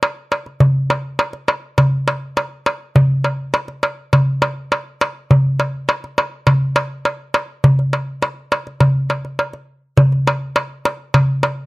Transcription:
0.03 darbuka tek medium
0.32 darbuka tek medium
0.46 darbuka tek soft
0.60 darbuka dum medium
0.90 darbuka tek medium
1.19 darbuka tek medium
1.33 darbuka tek soft
1.48 darbuka tek medium
1.78 darbuka tek medium
1.78 darbuka dum medium
2.08 darbuka tek medium
2.37 darbuka tek medium
2.66 darbuka tek medium
2.96 darbuka dum medium
3.24 darbuka tek medium
3.54 darbuka tek medium
3.68 darbuka tek soft
3.83 darbuka tek medium
4.13 darbuka tek medium
4.13 darbuka dum medium
4.42 darbuka tek medium
4.72 darbuka tek medium
5.01 darbuka tek medium
5.31 darbuka dum medium
5.60 darbuka tek medium
5.89 darbuka tek medium
6.04 darbuka tek soft
6.18 darbuka tek medium
6.47 darbuka tek medium
6.47 darbuka dum medium
6.76 darbuka tek medium
7.05 darbuka tek medium
7.34 darbuka tek medium
7.64 darbuka dum medium
7.79 darbuka tek soft
7.93 darbuka tek medium
8.22 darbuka tek medium
8.52 darbuka tek medium
8.67 darbuka tek soft
8.80 darbuka tek medium
8.80 darbuka dum medium
9.10 darbuka tek medium
9.25 darbuka tek soft
9.39 darbuka tek medium
9.53 darbuka tek soft
9.97 darbuka dum loud
10.12 darbuka tek soft
10.27 darbuka tek medium
10.56 darbuka tek medium
10.85 darbuka tek medium
11.14 darbuka tek medium
11.14 darbuka dum medium
11.43 darbuka tek medium

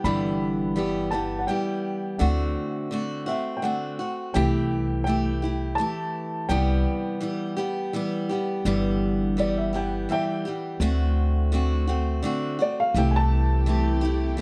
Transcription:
0.04 1.44 G1 medium
0.04 0.77 G2 medium
0.04 0.77 D3 medium
0.04 0.75 E3 medium
0.04 0.75 G3 medium
0.04 0.76 B3 medium
0.04 0.77 G4 medium
0.04 1.16 B5 medium
0.76 1.12 E3 medium
0.76 1.12 G3 medium
0.76 1.11 B3 medium
0.76 1.10 G4 medium
1.11 1.47 E3 soft
1.11 1.48 G3 soft
1.11 1.48 B3 soft
1.11 1.48 G4 medium
1.11 1.42 A5 medium
1.39 1.47 F#5 medium
1.47 2.19 E3 medium
1.47 2.19 G3 medium
1.47 2.20 B3 medium
1.47 2.21 G4 medium
1.47 2.16 G5 medium
2.18 2.55 D2 medium
2.18 2.90 D3 medium
2.18 2.92 A3 medium
2.18 2.92 C4 medium
2.18 2.92 F#4 medium
2.18 2.87 F#5 medium
2.91 3.27 D3 medium
2.91 3.28 A3 medium
2.91 3.27 C4 medium
2.91 3.25 F#4 medium
3.26 3.62 A3 soft
3.26 3.64 C4 soft
3.26 3.63 F#4 soft
3.26 3.58 E5 medium
3.57 3.64 G5 medium
3.62 3.99 D3 soft
3.62 4.00 A3 medium
3.62 3.99 C4 medium
3.62 3.98 F#4 medium
3.62 4.31 F#5 medium
3.99 4.34 A3 soft
3.99 4.36 C4 soft
3.99 4.35 F#4 soft
4.34 5.75 C2 medium
4.34 5.07 C3 medium
4.34 5.06 E3 medium
4.34 5.06 A3 medium
4.34 5.08 E4 medium
4.34 5.09 G4 medium
4.34 5.03 G5 medium
5.04 5.43 E3 medium
5.04 5.43 A3 medium
5.04 5.80 G5 medium
5.08 5.42 E4 medium
5.08 5.41 G4 medium
5.42 5.78 A3 soft
5.42 5.78 E4 medium
5.42 5.79 G4 soft
5.75 6.49 E3 medium
5.75 6.50 A3 soft
5.75 6.51 A5 medium
5.80 6.50 E4 medium
5.80 6.51 G4 medium
6.49 6.84 C2 medium
6.49 7.22 C3 medium
6.49 7.19 E3 medium
6.49 7.20 G3 medium
6.49 7.21 B3 medium
6.49 7.22 G4 medium
6.49 8.25 G5 medium
7.21 7.57 E3 medium
7.21 7.58 G3 medium
7.21 7.57 B3 medium
7.21 7.55 G4 medium
7.57 7.93 G3 soft
7.57 7.94 B3 medium
7.57 7.93 G4 medium
7.93 8.30 E3 medium
7.93 8.30 G3 medium
7.93 8.29 B3 medium
7.93 8.28 G4 medium
8.29 8.65 G3 soft
8.29 8.66 B3 soft
8.29 8.65 G4 medium
8.65 10.05 G1 medium
8.65 9.37 G2 medium
8.65 9.37 D3 medium
8.65 9.36 E3 medium
8.65 9.37 G3 medium
8.65 9.37 B3 medium
8.65 9.38 G4 medium
9.37 9.73 E3 medium
9.37 9.73 G3 medium
9.37 9.73 B3 medium
9.37 9.72 G4 medium
9.37 9.55 D5 medium
9.57 9.73 E5 medium
9.73 10.08 E3 soft
9.73 10.08 G3 soft
9.73 10.10 B3 soft
9.73 10.09 G4 soft
9.73 10.09 G5 medium
10.09 10.45 E3 medium
10.09 10.45 G3 medium
10.09 10.45 B3 medium
10.09 10.44 G4 medium
10.09 10.43 E5 medium
10.09 10.45 G5 medium
10.45 10.80 E3 soft
10.45 10.81 G3 soft
10.45 10.81 B3 soft
10.45 10.81 G4 soft
10.80 12.20 D2 medium
10.80 11.51 D3 medium
10.80 11.52 A3 medium
10.80 11.53 C4 medium
10.80 11.53 F#4 medium
11.52 11.88 D3 medium
11.52 11.88 A3 medium
11.52 11.88 C4 medium
11.52 11.86 F#4 medium
11.87 12.22 A3 soft
11.87 12.24 C4 medium
11.87 12.24 F#4 medium
12.23 12.59 D3 medium
12.23 12.60 A3 medium
12.23 12.59 C4 medium
12.23 12.58 F#4 medium
12.59 12.96 A3 soft
12.59 12.96 C4 soft
12.59 12.95 F#4 soft
12.59 12.78 D5 medium
12.80 12.96 F5 medium
12.94 14.34 C2 loud
12.94 14.41 C3 medium
12.94 13.67 C3 medium
12.94 13.66 E3 medium
12.94 14.41 A3 medium
12.94 13.66 A3 medium
12.94 13.67 E4 medium
12.94 14.41 G4 medium
12.94 13.69 G4 medium
12.94 13.14 G5 medium
13.11 13.15 G#5 medium
13.16 14.41 A5 loud
13.66 14.03 E3 medium
13.66 14.03 A3 medium
13.66 14.02 E4 medium
13.66 14.00 G4 medium
14.01 14.37 A3 medium
14.01 14.38 E4 medium
14.01 14.38 G4 medium
14.37 14.41 E3 medium
14.37 14.41 A3 medium

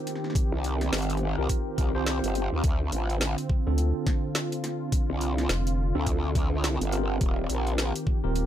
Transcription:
0.00 2.60 D#3 medium
0.00 1.34 C4 medium
0.00 7.17 C4 medium
0.00 1.34 F4 medium
0.00 1.34 G4 medium
0.00 2.60 G4 medium
0.00 1.34 A#4 medium
0.07 snare soft
0.07 closed hi-hat medium
0.15 snare soft
0.24 snare soft
0.30 snare soft
0.35 kick loud
0.35 closed hi-hat medium
0.52 0.91 C2 medium
0.64 closed hi-hat medium
0.81 snare soft
0.81 closed hi-hat soft
0.92 1.36 G1 loud
0.92 snare loud
0.92 closed hi-hat medium
0.98 closed hi-hat medium
1.02 closed hi-hat soft
1.10 closed hi-hat medium
1.12 closed hi-hat soft
1.17 closed hi-hat soft
1.38 1.48 C2 medium
1.38 1.76 C4 medium
1.38 1.76 F4 medium
1.38 1.76 G4 medium
1.38 1.76 A#4 medium
1.49 kick medium
1.49 closed hi-hat medium
1.78 2.21 C2 medium
1.78 1.92 C4 medium
1.78 1.91 F4 medium
1.78 1.91 G4 medium
1.78 1.91 A#4 medium
1.78 kick loud
1.78 closed hi-hat medium
1.95 2.62 C4 medium
1.95 2.62 F4 medium
1.95 2.62 G4 medium
1.95 2.62 C5 loud
2.06 snare loud
2.06 closed hi-hat medium
2.24 2.50 G1 loud
2.24 closed hi-hat medium
2.35 closed hi-hat medium
2.52 2.62 D#2 medium
2.64 2.91 D2 loud
2.64 7.17 D3 medium
2.64 7.17 F4 medium
2.64 kick loud
2.64 closed hi-hat medium
2.92 3.36 A1 medium
2.92 closed hi-hat medium
3.10 closed hi-hat soft
3.21 snare loud
3.21 closed hi-hat medium
3.38 closed hi-hat medium
3.49 kick loud
3.67 3.93 D2 medium
3.67 5.91 C4 medium
3.67 5.91 D4 medium
3.67 5.91 F4 medium
3.67 5.91 A4 medium
3.78 closed hi-hat medium
4.07 kick loud
4.07 snare soft
4.07 closed hi-hat medium
4.35 snare loud
4.35 closed hi-hat medium
4.52 closed hi-hat medium
4.64 snare soft
4.64 closed hi-hat medium
4.92 kick loud
4.92 closed hi-hat medium
5.10 5.48 C2 loud
5.21 closed hi-hat medium
5.38 snare soft
5.38 closed hi-hat soft
5.49 5.93 F1 loud
5.49 snare loud
5.49 closed hi-hat medium
5.67 closed hi-hat medium
5.95 6.54 D2 medium
5.95 6.90 C4 medium
5.95 6.90 D4 medium
5.95 6.90 F4 medium
5.95 6.90 A4 medium
6.07 kick medium
6.07 closed hi-hat medium
6.35 kick loud
6.35 closed hi-hat medium
6.54 6.78 C#2 medium
6.64 snare loud
6.64 closed hi-hat medium
6.81 7.19 G1 loud
6.81 closed hi-hat medium
6.92 8.20 C4 medium
6.92 8.20 F4 medium
6.92 8.20 G4 medium
6.92 8.20 A#4 medium
6.92 closed hi-hat medium
7.21 7.48 D#1 loud
7.21 8.46 D#3 medium
7.21 8.46 C4 medium
7.21 8.46 G4 medium
7.21 kick loud
7.21 closed hi-hat medium
7.50 7.93 A#1 medium
7.50 closed hi-hat medium
7.67 closed hi-hat soft
7.78 snare loud
7.78 closed hi-hat medium
7.96 closed hi-hat medium
8.07 kick loud
8.24 8.46 D#1 loud
8.24 8.46 C4 medium
8.24 8.46 F4 medium
8.24 8.46 G4 medium
8.24 8.46 A#4 medium
8.36 closed hi-hat medium

